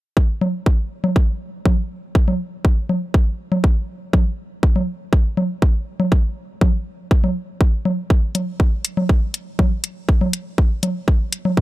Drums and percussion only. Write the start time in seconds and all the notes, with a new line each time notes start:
0.17 kick
0.41 low conga
0.66 kick
1.04 low conga
1.16 kick
1.65 kick, low conga
2.15 kick
2.28 low conga
2.65 kick
2.89 low conga
3.14 kick
3.52 low conga
3.64 kick
4.13 kick, low conga
4.63 kick
4.76 low conga
5.13 kick
5.37 low conga
5.62 kick
6.00 low conga
6.12 kick
6.61 kick, low conga
7.11 kick
7.24 low conga
7.61 kick
7.85 low conga
8.10 kick
8.35 closed hi-hat, low conga
8.60 kick
8.85 closed hi-hat
8.97 low conga
9.09 kick
9.34 closed hi-hat
9.59 kick, low conga
9.84 closed hi-hat
10.09 kick
10.21 low conga
10.33 closed hi-hat
10.58 kick
10.83 closed hi-hat, low conga
11.08 kick
11.33 closed hi-hat
11.45 low conga
11.57 kick